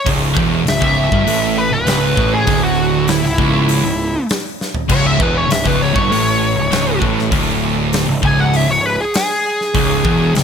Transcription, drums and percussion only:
0.06 kick, open hi-hat
0.37 kick
0.67 snare, open hi-hat
0.82 kick
1.12 kick
1.27 open hi-hat
1.87 snare, open hi-hat
2.17 kick
2.47 kick, open hi-hat
3.08 snare, open hi-hat
3.25 snare
3.38 kick
3.69 open hi-hat
4.29 snare, open hi-hat
4.61 snare
4.75 floor tom
4.89 kick, crash
5.20 kick
5.50 snare, open hi-hat
5.66 kick, snare
5.96 kick
6.12 open hi-hat
6.72 snare, open hi-hat
7.02 kick
7.19 snare
7.32 kick, open hi-hat
7.93 snare, open hi-hat
8.23 kick
8.53 open hi-hat
9.14 snare, open hi-hat
9.61 snare
9.75 kick, open hi-hat
10.05 kick
10.35 snare, open hi-hat

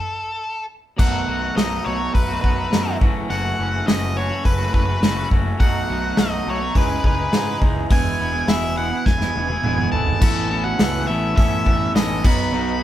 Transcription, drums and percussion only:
0.99 kick, crash
1.57 snare, open hi-hat
2.15 kick, open hi-hat
2.44 kick
2.73 snare, open hi-hat
3.01 kick
3.30 open hi-hat
3.88 snare, open hi-hat
4.45 kick, open hi-hat
4.74 kick
5.03 snare, open hi-hat
5.31 kick
5.60 kick, open hi-hat
6.17 snare, open hi-hat
6.75 kick, open hi-hat
7.04 kick
7.33 snare, open hi-hat
7.62 kick
7.90 kick, open hi-hat
8.48 snare, open hi-hat
9.06 kick, snare
9.21 snare
9.36 high tom
9.50 high tom
9.64 mid tom
9.78 mid tom
9.93 floor tom
10.07 floor tom
10.22 kick, crash
10.79 snare, open hi-hat
11.37 kick, open hi-hat
11.66 kick
11.96 snare, open hi-hat
12.24 kick, crash

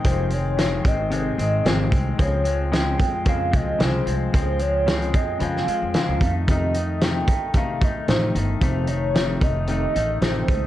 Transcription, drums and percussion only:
0.05 kick, closed hi-hat
0.30 closed hi-hat
0.58 snare, closed hi-hat
0.85 kick, closed hi-hat
1.11 closed hi-hat
1.39 closed hi-hat
1.66 snare, closed hi-hat
1.92 kick, closed hi-hat
2.19 kick, closed hi-hat
2.45 closed hi-hat
2.73 snare, closed hi-hat
3.00 kick, closed hi-hat
3.25 kick, closed hi-hat
3.53 kick, closed hi-hat
3.80 snare, closed hi-hat
4.07 closed hi-hat
4.34 kick, closed hi-hat
4.59 closed hi-hat
4.88 snare, closed hi-hat
5.02 closed hi-hat
5.14 kick, closed hi-hat
5.40 closed hi-hat
5.57 snare
5.68 closed hi-hat
5.94 snare, closed hi-hat
6.21 kick, closed hi-hat
6.48 kick, closed hi-hat
6.74 closed hi-hat
7.01 snare, closed hi-hat
7.28 kick, closed hi-hat
7.54 kick, closed hi-hat
7.81 kick, closed hi-hat
8.08 snare, closed hi-hat
8.35 closed hi-hat
8.61 kick, closed hi-hat
8.87 closed hi-hat
9.15 snare, closed hi-hat
9.41 kick, closed hi-hat
9.67 closed hi-hat
9.96 closed hi-hat
10.22 snare, closed hi-hat
10.48 kick, closed hi-hat

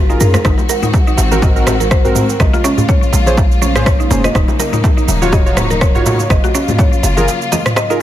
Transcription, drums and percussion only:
0.10 shaker
0.20 high conga, darbuka tek, darbuka dum, shaker
0.34 cross-stick, muted conga, high conga, shaker
0.45 kick, cross-stick, darbuka tek, shaker
0.58 darbuka ka, high conga, shaker
0.69 muted conga, darbuka tek, shaker
0.82 mid tom, high conga, shaker
0.94 kick, darbuka tek, shaker
1.07 muted conga, shaker
1.17 darbuka ka, high conga, darbuka tek, shaker
1.31 darbuka ka, low conga, shaker
1.42 kick, muted conga, darbuka tek, darbuka dum, shaker
1.56 shaker
1.67 cross-stick, mid tom, darbuka ka, high conga, darbuka tek, shaker
1.80 muted conga, low conga, shaker
1.91 kick, cross-stick, darbuka tek, shaker
2.05 darbuka dum, shaker
2.15 mid tom, high conga, darbuka tek, shaker
2.29 muted conga, shaker
2.40 kick, cross-stick, darbuka tek, shaker
2.54 darbuka ka, high conga, shaker
2.64 muted conga, darbuka tek, shaker
2.78 mid tom, high conga, darbuka dum, shaker
2.89 kick, darbuka tek, shaker
3.03 muted conga, shaker
3.13 darbuka ka, darbuka tek, shaker
3.26 darbuka ka, low conga, shaker
3.37 kick, muted conga, darbuka tek, shaker
3.52 shaker
3.62 darbuka tek, high conga, low conga, shaker
3.76 cross-stick, mid tom, muted conga, shaker
3.86 kick, cross-stick, darbuka tek, shaker
4.00 shaker
4.10 high conga, darbuka tek, darbuka dum, shaker
4.24 cross-stick, muted conga, high conga, shaker
4.35 kick, cross-stick, darbuka tek, shaker
4.48 darbuka ka, high conga, shaker
4.60 muted conga, darbuka tek, shaker
4.73 mid tom, high conga, shaker
4.84 kick, darbuka tek, shaker
4.98 muted conga, shaker
5.08 darbuka ka, high conga, darbuka tek, shaker
5.22 darbuka ka, low conga, shaker
5.32 kick, muted conga, darbuka tek, darbuka dum, shaker
5.47 shaker
5.57 cross-stick, mid tom, darbuka ka, high conga, darbuka tek, shaker
5.70 muted conga, low conga, shaker
5.81 kick, cross-stick, darbuka tek, shaker
5.95 darbuka dum, shaker
6.06 mid tom, high conga, darbuka tek, shaker
6.19 muted conga, shaker
6.30 kick, cross-stick, darbuka tek, shaker
6.44 darbuka ka, high conga, shaker
6.55 muted conga, darbuka tek, shaker
6.68 mid tom, high conga, darbuka dum, shaker
6.78 kick, darbuka tek, shaker
6.93 muted conga, shaker
7.03 darbuka ka, darbuka tek, high conga, shaker
7.17 darbuka ka, low conga, shaker
7.28 muted conga, darbuka tek, shaker
7.42 shaker
7.52 darbuka tek, high conga, low conga, shaker
7.66 cross-stick, mid tom, muted conga, shaker
7.76 cross-stick, darbuka tek, shaker
7.90 shaker

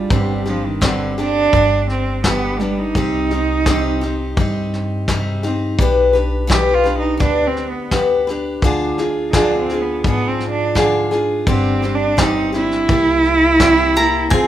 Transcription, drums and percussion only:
0.10 kick, snare
0.46 snare
0.82 kick, snare
1.18 snare
1.53 kick, snare
1.89 snare
2.24 kick, snare
2.60 snare
2.95 kick, snare
3.31 snare
3.66 kick, snare
4.02 snare
4.37 kick, snare
4.74 snare
5.08 kick, snare
5.43 snare
5.79 kick, snare
6.15 snare
6.50 kick, snare
6.85 snare
7.20 kick, snare
7.57 snare
7.91 kick, snare
8.28 snare
8.62 kick, snare
8.98 snare
9.33 kick, snare
9.69 snare
10.04 kick, snare
10.40 snare
10.75 kick, snare
11.12 snare
11.47 kick, snare
11.83 snare
12.18 kick, snare
12.54 snare
12.71 snare
12.89 kick, snare
13.24 snare
13.60 kick, snare
13.95 snare
14.31 kick, snare

